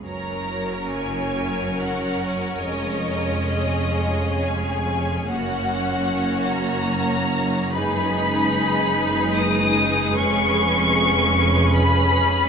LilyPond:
<<
  \new Staff \with { instrumentName = "Violin section" } { \time 3/4 \key fis \major \tempo 4 = 73 ais''4 gis''4 fis''4 | dis''2 gis''4 | fis''4. ais''4. | b''2 dis'''4 |
cis'''2 b''4 | }
  \new Staff \with { instrumentName = "Violin section" } { \time 3/4 \key fis \major << { cis''2.~ | cis''2. | cis''2. | b'2.~ |
b'2. | } \\ { ais'2.~ | ais'4 gis'2 | fis'2. | gis'2.~ |
gis'2. | } >> }
  \new Staff \with { instrumentName = "Viola section" } { \time 3/4 \key fis \major << { cis'2.~ | cis'2. | cis'2. | dis'2. |
cis'2. | } \\ { fis2. | gis2. | ais2. | gis2.~ |
gis2. | } >> }
  \new Staff \with { instrumentName = "Cello section" } { \clef bass \time 3/4 \key fis \major fis,2. | eis,2. | fis,2.~ | fis,2. |
eis,2. | }
  \new Staff \with { instrumentName = "Double bass section" } { \clef bass \time 3/4 \key fis \major fis,,2. | eis,,2. | fis,,2.~ | fis,,2. |
eis,,2. | }
>>